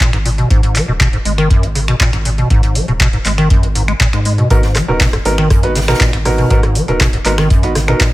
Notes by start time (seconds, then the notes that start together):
0.00 A#2, kick, clap, closed hi-hat
0.13 G#1 G#2, finger snap, closed hi-hat
0.25 A#2, open hi-hat
0.38 B2, closed hi-hat
0.50 G#1 G#2, kick, closed hi-hat
0.63 G#2, closed hi-hat
0.75 F#3, clap, open hi-hat
0.88 D#1 B2
1.00 B2, kick, clap, closed hi-hat
1.13 G#2, closed hi-hat
1.25 G#1 G#3, open hi-hat
1.38 D#3, finger snap, closed hi-hat
1.50 F#2, kick, closed hi-hat
1.63 G#1 G#2, closed hi-hat
1.75 C#3, open hi-hat
1.88 B2, finger snap, closed hi-hat
2.00 A#2, kick, clap, closed hi-hat
2.13 G#1 G#2, finger snap, closed hi-hat
2.25 A#2, open hi-hat
2.38 B2, closed hi-hat
2.50 G#1 G#2, kick, closed hi-hat
2.63 G#2, closed hi-hat
2.75 F#3, open hi-hat
2.88 D#1 B2, closed hi-hat
3.00 B2, kick, clap, closed hi-hat
3.13 G#2, closed hi-hat
3.25 G#1 G#3, clap, open hi-hat
3.38 D#3, finger snap, closed hi-hat
3.50 F#2, kick, closed hi-hat
3.63 G#1 G#2, closed hi-hat
3.75 G#2, open hi-hat
3.88 G#3, finger snap, closed hi-hat
4.00 A#2, kick, clap, closed hi-hat
4.13 G#2 G#3, finger snap, closed hi-hat
4.25 G#3, open hi-hat
4.38 B2, closed hi-hat
4.50 G#1 G#2 B3 D#4 F#4 A#4, kick, closed hi-hat
4.63 G#2, snare, closed hi-hat
4.75 F#3, cross-stick, clap, closed hi-hat, open hi-hat
4.88 D#1 B2 B3 D#4 F#4 A#4
5.00 B2, kick, snare, clap, closed hi-hat
5.13 G#2, cross-stick, closed hi-hat
5.25 G#1 G#3 B3 D#4 F#4 A#4, closed hi-hat, open hi-hat
5.38 D#3, finger snap, closed hi-hat
5.50 F#2, kick, cross-stick, closed hi-hat
5.63 G#1 G#2 B3 D#4 F#4 B4, closed hi-hat
5.75 C#3, snare, closed hi-hat, open hi-hat
5.81 snare, closed hi-hat
5.88 B2 B3 D#4 F#4 A#4, finger snap, cross-stick, snare, closed hi-hat
5.94 snare, closed hi-hat
6.00 A#2, kick, snare, clap, closed hi-hat
6.13 G#1 G#2, finger snap, closed hi-hat
6.25 A#2 B3 D#4 F#4 A#4, cross-stick, open hi-hat
6.38 B2, closed hi-hat
6.50 G#1 G#2 B3 D#4 F#4 A#4, kick, closed hi-hat
6.63 G#2, cross-stick, closed hi-hat
6.75 F#3, closed hi-hat, open hi-hat
6.88 D#1 B2 B3 D#4 F#4 A#4, closed hi-hat
7.00 B2, kick, cross-stick, snare, clap, closed hi-hat
7.13 G#2, closed hi-hat
7.25 G#1 G#3 B3 D#4 F#4 A#4, clap, closed hi-hat, open hi-hat
7.38 D#3, finger snap, cross-stick, snare, closed hi-hat
7.50 F#2, kick, closed hi-hat
7.63 G#1 G#2 B3 D#4 F#4 B4, closed hi-hat
7.75 C#3, cross-stick, snare, closed hi-hat, open hi-hat
7.88 B2 B3 D#4 F#4 A#4, finger snap, closed hi-hat
8.00 A#2, kick, snare, clap, closed hi-hat